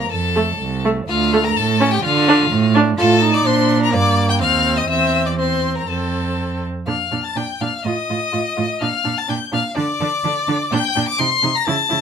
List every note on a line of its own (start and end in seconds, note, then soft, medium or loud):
0.01 0.11 A#5 loud
0.10 0.51 F2 medium
0.10 0.82 A4 medium
0.10 0.83 A5 loud
0.35 0.47 A3 medium
0.59 1.00 C2 medium
0.85 0.96 A3 medium
1.07 1.48 D2 loud
1.07 1.45 F4 loud
1.07 1.46 F5 loud
1.33 1.44 A3 loud
1.43 1.54 A#4 loud
1.43 1.58 A#5 loud
1.55 1.96 A2 loud
1.55 1.90 A4 loud
1.55 1.93 A5 loud
1.80 1.91 C#4 loud
1.91 2.03 G4 loud
1.91 2.03 G5 loud
2.03 2.43 D3 loud
2.03 2.73 F4 loud
2.03 2.74 F5 loud
2.28 2.39 D4 loud
2.51 2.91 A2 loud
2.74 2.86 D4 loud
2.98 3.43 A2 loud
2.98 3.20 F4 loud
2.98 3.31 A4 loud
2.98 3.36 A5 loud
3.21 3.48 D#4 loud
3.33 3.48 D5 loud
3.33 3.47 D6 loud
3.46 3.95 A#2 loud
3.46 3.94 D4 loud
3.46 3.81 C5 loud
3.46 3.81 C6 loud
3.82 3.96 A#4 loud
3.82 3.93 A#5 loud
3.92 4.42 G2 loud
3.92 4.42 A#3 loud
3.92 4.31 D5 loud
3.92 4.29 D6 loud
4.29 4.40 G5 loud
4.29 4.35 G6 loud
4.40 4.88 D#2 loud
4.40 4.88 C4 medium
4.40 4.79 F5 loud
4.40 4.79 F6 loud
4.77 4.89 D#5 loud
4.77 4.89 D#6 loud
4.88 5.83 E2 medium
4.88 5.34 C4 medium
4.88 5.28 E5 loud
4.88 5.25 E6 loud
5.26 5.38 D5 medium
5.26 5.31 D6 loud
5.38 5.87 C4 medium
5.38 5.77 C5 medium
5.38 5.75 C6 medium
5.75 5.87 A#4 medium
5.75 5.91 A#5 medium
5.87 6.65 F2 medium
5.87 6.65 C4 medium
5.87 6.61 A4 medium
5.87 6.63 A5 medium
6.87 6.95 A#2 medium
6.87 6.95 D4 medium
6.87 7.22 F5 medium
6.87 7.26 F6 medium
7.12 7.20 A#2 medium
7.12 7.20 D4 medium
7.24 7.38 A5 medium
7.24 7.39 A6 medium
7.36 7.44 A#2 medium
7.36 7.44 D4 medium
7.36 7.63 G5 medium
7.36 7.62 G6 medium
7.61 7.69 A#2 medium
7.61 7.69 D4 medium
7.61 7.84 F5 medium
7.61 7.85 F6 loud
7.85 7.93 A2 medium
7.85 7.93 F4 medium
7.85 8.83 D#5 loud
7.85 8.80 D#6 loud
8.10 8.18 A2 medium
8.10 8.18 F4 medium
8.32 8.41 A2 medium
8.32 8.40 F4 medium
8.56 8.66 A2 medium
8.56 8.64 F4 medium
8.81 8.90 A#2 medium
8.81 8.89 D4 medium
8.81 9.19 F5 loud
8.81 9.20 F6 loud
9.04 9.13 A#2 medium
9.04 9.12 D4 medium
9.18 9.29 A5 medium
9.18 9.32 A6 loud
9.28 9.38 A#2 medium
9.28 9.36 D4 medium
9.28 9.38 G5 medium
9.28 9.53 G6 medium
9.52 9.61 A#2 medium
9.52 9.60 D4 medium
9.52 9.76 F5 loud
9.52 9.61 F6 loud
9.75 9.85 D3 loud
9.75 9.83 D4 medium
9.75 10.70 D5 loud
9.75 10.74 D6 loud
10.00 10.08 D3 medium
10.00 10.08 D4 medium
10.24 10.32 D3 medium
10.24 10.33 D4 medium
10.48 10.56 D3 medium
10.48 10.56 D4 medium
10.72 10.80 A#2 loud
10.72 10.81 D4 medium
10.72 11.08 G5 loud
10.72 11.08 G6 loud
10.96 11.04 A#2 loud
10.96 11.04 D4 medium
11.08 11.21 D6 loud
11.08 11.21 D7 loud
11.18 11.28 C3 medium
11.18 11.26 D#4 medium
11.18 11.57 C6 loud
11.18 11.58 C7 loud
11.43 11.51 C3 medium
11.43 11.51 D#4 medium
11.55 11.68 A#5 loud
11.55 11.67 A#6 loud
11.66 11.76 C#3 loud
11.66 11.75 E4 medium
11.66 12.01 A5 loud
11.66 12.01 A6 loud
11.89 12.00 C#3 medium
11.89 11.97 E4 medium